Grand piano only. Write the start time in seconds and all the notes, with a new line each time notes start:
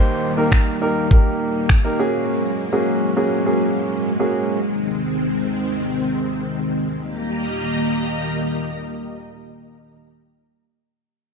Already playing: A#3 D#4 G4 C5
0.37 A#3 D#4 G4 A#4
0.81 A#3 D#4 G4 A#4
1.11 A#3 D#4 G4 A#4
1.84 A#3 D#4 G4 A#4
1.99 A#3 C#4 F#4 G#4
2.72 A#3 C#4 F#4 G#4
3.16 A#3 C#4 F#4 G#4
3.46 A#3 C#4 F#4 G#4
4.19 A#3 C#4 F#4 G#4